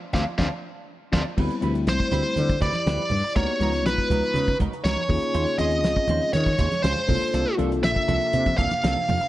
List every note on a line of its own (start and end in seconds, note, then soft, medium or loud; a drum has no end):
0.13 0.23 D2 medium
0.13 0.21 A3 medium
0.13 0.21 C4 medium
0.13 0.22 C4 medium
0.13 0.21 D4 medium
0.13 0.22 D4 medium
0.13 0.22 F4 medium
0.13 0.22 C5 medium
0.13 0.22 D5 medium
0.13 0.22 F5 medium
0.13 kick medium
0.13 snare medium
0.13 high conga medium
0.38 0.48 D2 medium
0.38 0.46 A3 medium
0.38 0.46 C4 medium
0.38 0.47 C4 medium
0.38 0.46 D4 medium
0.38 0.47 D4 medium
0.38 0.47 F4 medium
0.38 0.46 C5 medium
0.38 0.46 D5 medium
0.38 0.46 F5 medium
0.38 kick medium
0.38 snare medium
0.38 high conga medium
1.12 1.22 D2 medium
1.12 1.21 A3 medium
1.12 1.20 C4 medium
1.12 1.21 C4 medium
1.12 1.20 D4 medium
1.12 1.21 D4 medium
1.12 1.21 F4 medium
1.12 1.21 C5 medium
1.12 1.21 D5 medium
1.12 1.21 F5 medium
1.12 kick medium
1.12 snare medium
1.12 high conga loud
1.37 1.48 D2 medium
1.37 3.34 D3 medium
1.37 1.60 G3 medium
1.37 1.53 G3 medium
1.37 1.60 B3 medium
1.37 1.60 C4 medium
1.37 1.53 C4 medium
1.37 3.35 E4 medium
1.37 1.60 E4 medium
1.37 1.54 E4 medium
1.37 3.35 G4 medium
1.37 1.54 B4 medium
1.37 3.35 C5 medium
1.37 kick loud
1.37 crash medium
1.51 closed hi-hat soft
1.61 1.88 D2 medium
1.61 2.53 G3 medium
1.61 1.75 G3 medium
1.61 2.53 A3 medium
1.61 2.53 C4 medium
1.61 1.73 C4 medium
1.61 2.53 E4 medium
1.61 1.74 E4 medium
1.61 1.73 B4 medium
1.61 closed hi-hat medium
1.61 high conga medium
1.75 muted clean electric guitar stroke soft
1.75 closed hi-hat soft
1.87 1.97 C2 medium
1.87 2.59 C5 medium
1.87 muted clean electric guitar stroke soft
1.87 snare loud
1.87 closed hi-hat medium
1.99 muted clean electric guitar stroke soft
1.99 kick medium
2.12 2.22 D2 medium
2.12 2.25 G3 medium
2.12 2.24 C4 medium
2.12 2.23 E4 medium
2.12 2.23 B4 medium
2.12 closed hi-hat medium
2.12 high conga medium
2.12 low conga medium
2.24 muted clean electric guitar stroke soft
2.36 2.57 D3 medium
2.36 closed hi-hat medium
2.36 low conga medium
2.49 muted clean electric guitar stroke soft
2.49 kick medium
2.49 closed hi-hat soft
2.60 2.72 D2 medium
2.60 2.74 G3 medium
2.60 2.73 C4 medium
2.60 2.73 E4 medium
2.60 2.73 B4 medium
2.60 3.32 D5 medium
2.60 kick medium
2.60 closed hi-hat medium
2.60 low conga medium
2.73 muted fretless electric bass stroke soft
2.73 closed hi-hat soft
2.73 high conga medium
2.86 2.96 D2 medium
2.86 3.02 G3 medium
2.86 3.02 C4 medium
2.86 3.02 E4 medium
2.86 3.02 B4 medium
2.86 snare loud
2.86 closed hi-hat medium
2.98 high conga medium
3.10 3.21 G2 medium
3.10 muted clean electric guitar stroke soft
3.10 open hi-hat medium
3.10 low conga medium
3.24 muted fretless electric bass stroke soft
3.24 muted clean electric guitar stroke soft
3.35 3.46 C#2 loud
3.35 5.09 C#3 medium
3.35 3.51 F#3 medium
3.35 3.59 A#3 medium
3.35 3.59 B3 medium
3.35 3.51 B3 medium
3.35 3.51 D#4 medium
3.35 3.59 D#4 medium
3.35 7.06 D#4 medium
3.35 3.59 F#4 medium
3.35 3.52 A#4 medium
3.35 3.83 C#5 medium
3.35 5.09 A#5 medium
3.35 kick loud
3.35 closed hi-hat medium
3.60 3.85 C#2 medium
3.60 3.74 F#3 medium
3.60 4.51 G#3 medium
3.60 4.52 B3 medium
3.60 3.73 B3 medium
3.60 4.52 D#4 medium
3.60 3.73 D#4 medium
3.60 4.52 F4 medium
3.60 3.73 A#4 medium
3.60 closed hi-hat medium
3.60 high conga medium
3.73 muted clean electric guitar stroke soft
3.73 snare soft
3.73 closed hi-hat soft
3.85 3.95 B1 medium
3.85 4.57 B4 medium
3.85 muted clean electric guitar stroke soft
3.85 snare loud
3.85 closed hi-hat medium
3.98 muted clean electric guitar stroke soft
3.98 kick medium
4.10 4.20 C#2 medium
4.10 4.24 F#3 medium
4.10 4.24 B3 medium
4.10 4.24 D#4 medium
4.10 4.23 A#4 medium
4.10 closed hi-hat medium
4.10 high conga medium
4.10 low conga medium
4.24 muted clean electric guitar stroke soft
4.24 closed hi-hat soft
4.34 4.54 C#3 medium
4.34 closed hi-hat medium
4.34 low conga medium
4.48 muted clean electric guitar stroke soft
4.48 kick medium
4.48 closed hi-hat soft
4.60 4.70 C#2 medium
4.60 4.73 F#3 medium
4.60 4.73 B3 medium
4.60 4.73 D#4 medium
4.60 4.73 A#4 medium
4.60 kick medium
4.60 closed hi-hat medium
4.60 low conga medium
4.72 muted fretless electric bass stroke soft
4.72 muted clean electric guitar stroke soft
4.72 closed hi-hat soft
4.84 4.95 C#2 medium
4.84 5.01 F#3 medium
4.84 5.01 B3 medium
4.84 5.01 D#4 medium
4.84 5.01 A#4 medium
4.84 5.56 C#5 medium
4.84 snare loud
4.84 closed hi-hat medium
4.97 high conga medium
5.09 5.20 D#2 medium
5.09 7.07 C#3 medium
5.09 7.07 G#3 medium
5.09 5.55 A#3 medium
5.09 5.55 C#4 medium
5.09 5.55 F4 medium
5.09 5.56 G#4 medium
5.09 muted clean electric guitar stroke soft
5.09 kick loud
5.09 open hi-hat medium
5.09 low conga medium
5.23 muted fretless electric bass stroke soft
5.23 muted clean electric guitar stroke soft
5.23 closed hi-hat soft
5.34 5.45 D#2 loud
5.34 5.50 G#3 medium
5.34 5.50 C#4 medium
5.34 5.50 F4 medium
5.34 5.50 C5 medium
5.34 closed hi-hat medium
5.47 closed hi-hat soft
5.58 5.85 D#2 medium
5.58 5.72 G#3 medium
5.58 6.50 C4 medium
5.58 6.50 C#4 medium
5.58 5.73 C#4 medium
5.58 6.50 F4 medium
5.58 5.72 F4 medium
5.58 6.51 G#4 medium
5.58 5.72 C5 medium
5.58 6.30 D#5 medium
5.58 closed hi-hat medium
5.58 high conga medium
5.71 muted clean electric guitar stroke soft
5.71 closed hi-hat soft
5.84 5.95 C#2 medium
5.84 muted clean electric guitar stroke soft
5.84 snare loud
5.84 closed hi-hat medium
5.97 muted clean electric guitar stroke soft
5.97 kick medium
6.08 6.19 D#2 medium
6.08 6.22 G#3 medium
6.08 6.22 C#4 medium
6.08 6.22 F4 medium
6.08 6.21 C5 medium
6.08 closed hi-hat medium
6.08 high conga medium
6.08 low conga medium
6.22 muted clean electric guitar stroke soft
6.33 6.54 D#3 medium
6.33 6.80 C#5 medium
6.33 closed hi-hat medium
6.33 low conga medium
6.46 muted clean electric guitar stroke soft
6.46 kick medium
6.46 closed hi-hat soft
6.58 6.69 D#2 medium
6.58 6.72 G#3 medium
6.58 6.70 C#4 medium
6.58 6.70 F4 medium
6.58 6.70 C5 medium
6.58 kick medium
6.58 closed hi-hat medium
6.58 low conga medium
6.71 muted clean electric guitar stroke soft
6.71 snare soft
6.71 closed hi-hat soft
6.71 high conga medium
6.82 6.94 C#2 medium
6.82 6.99 G#3 medium
6.82 6.99 C#4 medium
6.82 6.99 F4 medium
6.82 7.54 C5 medium
6.82 7.00 C5 medium
6.82 snare loud
6.82 closed hi-hat medium
6.97 high conga medium
7.08 7.19 C2 medium
7.08 9.28 C3 medium
7.08 7.54 A#3 medium
7.08 9.28 A#3 medium
7.08 7.54 D4 medium
7.08 9.28 D4 medium
7.08 7.55 F4 medium
7.08 9.28 F4 medium
7.08 7.54 A4 medium
7.08 9.28 A4 medium
7.08 muted clean electric guitar stroke soft
7.08 kick medium
7.08 open hi-hat medium
7.08 low conga medium
7.22 muted clean electric guitar stroke soft
7.33 7.44 C2 medium
7.33 7.49 A#3 medium
7.33 7.49 D4 medium
7.33 7.49 F4 medium
7.33 7.49 A4 medium
7.33 closed hi-hat medium
7.57 7.84 C2 medium
7.57 8.49 A#3 medium
7.57 7.71 A#3 medium
7.57 8.49 D4 medium
7.57 7.71 D4 medium
7.57 8.49 F4 medium
7.57 7.71 F4 medium
7.57 8.50 A4 medium
7.57 7.70 A4 medium
7.57 closed hi-hat medium
7.57 high conga medium
7.72 muted clean electric guitar stroke soft
7.72 closed hi-hat soft
7.83 7.94 A#1 medium
7.83 8.55 E5 medium
7.83 muted clean electric guitar stroke soft
7.83 snare loud
7.83 closed hi-hat medium
7.95 muted clean electric guitar stroke soft
7.95 kick medium
8.08 8.19 C2 medium
8.08 8.21 A#3 medium
8.08 8.21 D4 medium
8.08 8.20 F4 medium
8.08 8.20 A4 medium
8.08 closed hi-hat medium
8.08 high conga medium
8.08 low conga medium
8.21 muted clean electric guitar stroke soft
8.21 closed hi-hat soft
8.33 8.53 C3 medium
8.33 closed hi-hat medium
8.33 low conga medium
8.46 muted clean electric guitar stroke soft
8.46 kick medium
8.46 closed hi-hat soft
8.46 high conga medium
8.58 8.68 C2 medium
8.58 8.71 A#3 medium
8.58 8.71 D4 medium
8.58 8.70 F4 medium
8.58 8.70 A4 medium
8.58 9.28 F5 medium
8.58 kick medium
8.58 closed hi-hat medium
8.58 low conga medium
8.71 muted clean electric guitar stroke soft
8.71 muted fretless electric bass stroke soft
8.71 closed hi-hat soft
8.71 high conga medium
8.83 8.94 C2 medium
8.83 8.98 A#3 medium
8.83 8.99 D4 medium
8.83 8.98 F4 medium
8.83 8.99 A4 medium
8.83 snare loud
8.83 closed hi-hat medium
8.96 high conga medium
9.08 9.18 F2 medium
9.08 muted clean electric guitar stroke soft
9.08 open hi-hat medium
9.08 low conga medium
9.21 muted clean electric guitar stroke soft
9.21 muted fretless electric bass stroke soft
9.21 closed hi-hat soft